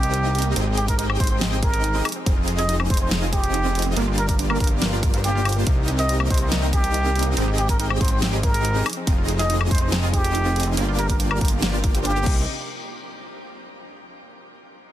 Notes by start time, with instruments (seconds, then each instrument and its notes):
Already playing: analog synth bass C2, string section C3 A#3 D#4, supersaw synth C4 D#4 G4 A#4 D#5, muted trumpet G4
0.03 synth arpeggio sound G4, closed hi-hat
0.14 synth arpeggio sound C4, closed hi-hat
0.25 synth arpeggio sound A#3
0.35 synth arpeggio sound G4, closed hi-hat
0.39 closed hi-hat
0.42 synth arpeggio sound A#3, closed hi-hat
0.56 analog synth bass G#1, string section G#3 C4 G5, supersaw synth C4 D#4 G4 G#4 D#5, synth arpeggio sound C4, closed hi-hat
0.67 synth arpeggio sound G4
0.77 muted trumpet G4, synth arpeggio sound G#4, closed hi-hat
0.88 synth arpeggio sound G#4, muted trumpet A#4, kick, closed hi-hat
0.99 synth arpeggio sound D#4, muted trumpet A#4, closed hi-hat
1.10 synth arpeggio sound C4, high woodblock
1.20 analog synth bass G#1, supersaw synth C4 D#4 G4 G#4 D#5, synth arpeggio sound G#4, muted trumpet C5, kick, closed hi-hat
1.24 closed hi-hat
1.27 synth arpeggio sound C4, muted trumpet C5, closed hi-hat
1.41 synth arpeggio sound C4, snare, closed hi-hat
1.52 synth arpeggio sound G4
1.62 synth arpeggio sound G#4, muted trumpet A#4, kick, closed hi-hat
1.73 synth arpeggio sound G#4, closed hi-hat
1.84 synth arpeggio sound D#4, closed hi-hat
1.95 synth arpeggio sound C4
2.05 string section F3 G#3 D#4, synth arpeggio sound G#4, closed hi-hat, high woodblock
2.09 closed hi-hat
2.12 synth arpeggio sound C4, closed hi-hat
2.26 analog synth bass F1, synth arpeggio sound C4, supersaw synth C4 D#4 F4 G#4 D#5, kick, closed hi-hat
2.37 synth arpeggio sound F4
2.48 synth arpeggio sound G#4, closed hi-hat
2.59 synth arpeggio sound G#4, muted trumpet D#5, closed hi-hat
2.69 synth arpeggio sound D#4, closed hi-hat
2.80 synth arpeggio sound C4, high woodblock
2.90 analog synth bass F1, supersaw synth C4 D#4 F4 G#4 D#5, synth arpeggio sound G#4, muted trumpet C5, kick, closed hi-hat
2.94 closed hi-hat
2.97 closed hi-hat
3.01 synth arpeggio sound C4, muted trumpet C5
3.11 synth arpeggio sound C4, snare, closed hi-hat
3.22 synth arpeggio sound F4
3.33 muted trumpet G4, synth arpeggio sound G#4, kick, closed hi-hat
3.44 synth arpeggio sound G#4, closed hi-hat
3.54 synth arpeggio sound D#4, closed hi-hat
3.65 synth arpeggio sound C4
3.75 synth arpeggio sound G#4, closed hi-hat
3.79 closed hi-hat
3.82 synth arpeggio sound C4, closed hi-hat
3.97 analog synth bass G1, string section G3 F4 A#4, synth arpeggio sound A#3, supersaw synth A#3 D4 F4 G4 D5, closed hi-hat
4.08 synth arpeggio sound F4
4.18 synth arpeggio sound G4, muted trumpet A#4, closed hi-hat
4.29 synth arpeggio sound G4, muted trumpet A#4, kick, closed hi-hat
4.39 synth arpeggio sound D4, closed hi-hat
4.50 synth arpeggio sound A#3, muted trumpet A#4, high woodblock
4.60 analog synth bass G1, supersaw synth A#3 D4 F4 G4 D5, synth arpeggio sound G4, muted trumpet A#4, kick, closed hi-hat
4.64 closed hi-hat
4.67 synth arpeggio sound A#3, closed hi-hat
4.82 synth arpeggio sound A#3, snare, closed hi-hat
4.93 synth arpeggio sound F4
5.03 synth arpeggio sound A#4, kick, closed hi-hat
5.14 analog synth bass G1, supersaw synth A#3 D4 F4 G4 C5, synth arpeggio sound F5, closed hi-hat
5.24 synth arpeggio sound D4, muted trumpet G4, closed hi-hat
5.35 synth arpeggio sound F4
5.45 synth arpeggio sound F4, closed hi-hat, high woodblock
5.49 closed hi-hat
5.52 synth arpeggio sound A#4, closed hi-hat
5.67 analog synth bass C2, string section C3 A#3 D#4, synth arpeggio sound A#3, supersaw synth C4 D#4 G4 A#4 D#5, kick, closed hi-hat
5.78 synth arpeggio sound D#4
5.88 synth arpeggio sound G4, closed hi-hat
5.99 synth arpeggio sound G4, muted trumpet D#5, closed hi-hat
6.09 synth arpeggio sound C4, closed hi-hat
6.20 synth arpeggio sound A#3, high woodblock
6.30 analog synth bass C2, supersaw synth C4 D#4 G4 A#4 D#5, synth arpeggio sound G4, muted trumpet C5, kick, closed hi-hat
6.34 closed hi-hat
6.38 synth arpeggio sound A#3, muted trumpet C5, closed hi-hat
6.52 synth arpeggio sound A#3, snare, closed hi-hat
6.63 synth arpeggio sound D#4
6.73 muted trumpet G4, synth arpeggio sound G4, kick, closed hi-hat
6.84 synth arpeggio sound G4, closed hi-hat
6.94 synth arpeggio sound C4, closed hi-hat
7.05 synth arpeggio sound A#3
7.15 synth arpeggio sound G4, closed hi-hat
7.19 closed hi-hat
7.23 synth arpeggio sound A#3, closed hi-hat
7.37 analog synth bass G#1, string section G#3 C4 G5, synth arpeggio sound C4, supersaw synth C4 D#4 G4 G#4 D#5, closed hi-hat
7.48 synth arpeggio sound G4
7.58 muted trumpet G4, synth arpeggio sound G#4, closed hi-hat
7.69 synth arpeggio sound G#4, muted trumpet A#4, kick, closed hi-hat
7.80 synth arpeggio sound D#4, muted trumpet A#4, closed hi-hat
7.90 synth arpeggio sound C4, high woodblock
8.01 analog synth bass G#1, supersaw synth C4 D#4 G4 G#4 D#5, synth arpeggio sound G#4, muted trumpet C5, kick, closed hi-hat
8.05 closed hi-hat
8.08 synth arpeggio sound C4, muted trumpet C5, closed hi-hat
8.22 synth arpeggio sound C4, snare, closed hi-hat
8.33 synth arpeggio sound G4
8.43 synth arpeggio sound G#4, muted trumpet A#4, kick, closed hi-hat
8.54 synth arpeggio sound G#4, closed hi-hat
8.65 synth arpeggio sound D#4, closed hi-hat
8.75 synth arpeggio sound C4
8.86 string section F3 G#3 D#4, synth arpeggio sound G#4, closed hi-hat, high woodblock
8.90 closed hi-hat
8.93 synth arpeggio sound C4, closed hi-hat
9.07 analog synth bass F1, synth arpeggio sound C4, supersaw synth C4 D#4 F4 G#4 D#5, kick, closed hi-hat
9.18 synth arpeggio sound F4
9.28 synth arpeggio sound G#4, closed hi-hat
9.39 synth arpeggio sound G#4, muted trumpet D#5, closed hi-hat
9.50 synth arpeggio sound D#4, closed hi-hat
9.61 synth arpeggio sound C4, high woodblock
9.71 analog synth bass F1, supersaw synth C4 D#4 F4 G#4 D#5, synth arpeggio sound G#4, muted trumpet C5, kick, closed hi-hat
9.75 closed hi-hat
9.78 synth arpeggio sound C4, muted trumpet C5, closed hi-hat
9.92 synth arpeggio sound C4, snare, closed hi-hat
10.03 synth arpeggio sound F4
10.13 muted trumpet G4, synth arpeggio sound G#4, kick, closed hi-hat
10.24 synth arpeggio sound G#4, closed hi-hat
10.35 synth arpeggio sound D#4, closed hi-hat
10.46 synth arpeggio sound C4
10.56 synth arpeggio sound G#4, closed hi-hat
10.60 closed hi-hat
10.63 synth arpeggio sound C4, closed hi-hat
10.77 analog synth bass G1, string section G3 F4 A#4, supersaw synth A#3 D4 F4 G4 D5, synth arpeggio sound A#3, closed hi-hat
10.88 synth arpeggio sound F4
10.99 synth arpeggio sound G4, muted trumpet A#4, closed hi-hat
11.10 synth arpeggio sound G4, muted trumpet A#4, kick, closed hi-hat
11.20 synth arpeggio sound D4, closed hi-hat
11.31 synth arpeggio sound A#3, muted trumpet A#4, high woodblock
11.41 analog synth bass G1, supersaw synth A#3 D4 F4 G4 D5, synth arpeggio sound G4, muted trumpet A#4, kick, closed hi-hat
11.45 closed hi-hat
11.48 synth arpeggio sound A#3, closed hi-hat
11.62 synth arpeggio sound A#3, snare, closed hi-hat
11.73 synth arpeggio sound F4
11.84 synth arpeggio sound A#3, kick, closed hi-hat
11.95 analog synth bass G1, supersaw synth A#3 D4 F4 G4 C5, synth arpeggio sound G4, closed hi-hat
12.05 synth arpeggio sound D4, muted trumpet G4, closed hi-hat
12.16 synth arpeggio sound G4
12.26 analog synth bass C2, string section C3 A#3 D#5, synth arpeggio sound A#3, supersaw synth C4 D#4 G4 A#4 D#5, kick, crash